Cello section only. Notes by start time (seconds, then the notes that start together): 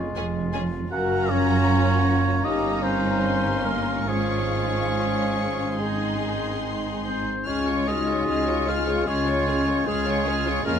0.17 F2
0.92 F#2
2.45 G2
4.08 G#2
7.46 C#2
8.28 C#2
9.07 C#2
9.87 C#2
10.65 F2